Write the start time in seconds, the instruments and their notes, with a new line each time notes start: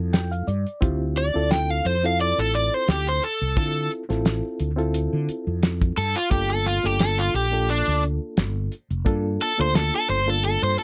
Already playing: fretless electric bass F2, reed electric piano C4 E4 F4 A4
0.13 reed electric piano G5, snare, closed hi-hat
0.31 reed electric piano F5, closed hi-hat
0.47 fretless electric bass G2, reed electric piano D5, closed hi-hat
0.67 closed hi-hat
0.81 fretless electric bass D2, reed electric piano C4 E4 F4 G4, kick, closed hi-hat
1.17 overdriven electric guitar D5, closed hi-hat
1.34 fretless electric bass D2, reed electric piano C4 E4 F4 A4
1.51 overdriven electric guitar G5, snare, closed hi-hat
1.70 overdriven electric guitar F5, closed hi-hat
1.85 fretless electric bass F2, overdriven electric guitar C5, closed hi-hat
2.03 reed electric piano C4 E4 F4 A4, overdriven electric guitar F5
2.19 overdriven electric guitar D5, closed hi-hat
2.38 fretless electric bass A1, overdriven electric guitar A4
2.54 overdriven electric guitar D5, closed hi-hat
2.74 overdriven electric guitar C5
2.88 fretless electric bass D2, overdriven electric guitar G4, snare, closed hi-hat
3.08 overdriven electric guitar C5
3.22 overdriven electric guitar A4, closed hi-hat
3.41 fretless electric bass C2, closed hi-hat
3.56 fretless electric bass D3, reed electric piano C4 E4 F4 A4, overdriven electric guitar A4, kick, closed hi-hat
3.91 closed hi-hat
4.09 fretless electric bass A1, reed electric piano C4 E4 F4 A4, snare, closed hi-hat
4.25 snare, closed hi-hat
4.60 fretless electric bass D2, closed hi-hat
4.76 reed electric piano C4 E4 F4 A4, closed hi-hat
4.94 closed hi-hat
5.13 fretless electric bass D3
5.29 muted fretless electric bass stroke, closed hi-hat
5.47 fretless electric bass F2
5.63 snare, closed hi-hat
5.82 kick, closed hi-hat
5.97 fretless electric bass G2, overdriven electric guitar A4, open hi-hat
6.16 overdriven electric guitar F4, closed hi-hat
6.30 fretless electric bass G1, reed electric piano A#3 D4 F4 A4, overdriven electric guitar G4, kick, closed hi-hat
6.50 overdriven electric guitar A4
6.66 overdriven electric guitar F4, snare, closed hi-hat
6.83 fretless electric bass G1, reed electric piano A#3 D4 F4 A4, overdriven electric guitar G4
7.00 overdriven electric guitar A4, snare, closed hi-hat
7.19 overdriven electric guitar F4, closed hi-hat
7.34 fretless electric bass A#1, overdriven electric guitar G4, closed hi-hat
7.51 reed electric piano A#3 D4 F4 A4
7.69 overdriven electric guitar D4, closed hi-hat
7.87 fretless electric bass D2
8.03 closed hi-hat
8.37 fretless electric bass G1, snare, closed hi-hat
8.72 closed hi-hat
8.90 fretless electric bass F1, closed hi-hat
9.05 fretless electric bass G2, reed electric piano A#3 D4 F4 A4, kick, closed hi-hat
9.40 overdriven electric guitar A4, closed hi-hat
9.58 fretless electric bass D2, reed electric piano A#3 D4 F4 A4, overdriven electric guitar C5, closed hi-hat
9.75 overdriven electric guitar A4, snare, closed hi-hat
9.96 overdriven electric guitar A4
10.09 fretless electric bass G1, overdriven electric guitar C5, closed hi-hat
10.26 reed electric piano A#3 D4 F4 A4, overdriven electric guitar A4, closed hi-hat
10.44 overdriven electric guitar A4, closed hi-hat
10.62 fretless electric bass G2, overdriven electric guitar C5
10.78 overdriven electric guitar A4, muted fretless electric bass stroke, closed hi-hat